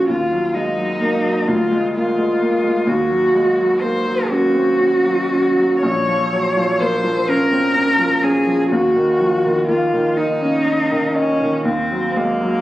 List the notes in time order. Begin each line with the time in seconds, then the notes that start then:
Already playing: F3 A#3 C4 C#4
0.08 D#2 F4
0.32 F#3
0.54 G#3 D#4
0.78 F#3
1.00 A#3
1.24 F#3
1.47 D2 F4
1.72 G#3
1.96 A#3 F4
2.18 G#3
2.41 A#3
2.64 G#3
2.87 D#2 F#4
3.10 F#3
3.34 G#3
3.59 F#3
3.81 A#3 C5
4.07 F#3
4.29 C#4 F#4
4.54 C4
4.79 C#4
5.05 F#3
5.31 C#4
5.56 F#3
5.82 A#1 C#5
6.08 F3
6.33 F#3
6.57 F3
6.80 A#3 C5
7.04 F3
7.28 C#4 A#4
7.52 C4
7.76 C#4
7.99 F3
8.23 C#4 G#4
8.46 F3
8.70 D#2 F#4
8.96 D#3
9.20 F3
9.44 D#3
9.67 A#3 F4
9.94 D#3
10.16 D#4
10.41 C#4
10.66 D#4
10.91 D#3
11.15 C#4 D#4
11.41 D#3
11.65 D#2 C4
11.91 F#3
12.16 G#3 A#3
12.41 F#3